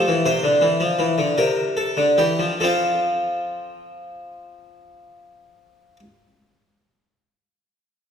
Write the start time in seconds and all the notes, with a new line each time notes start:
Already playing: A4
0.08 E3
0.26 C3 C5
0.43 D3
0.61 E3
0.80 F3
0.99 E3
1.18 D3
1.38 C3 A#4
1.77 A4
1.97 D3
2.18 E3 G4
2.39 F3
2.60 F3 C4 F4 A4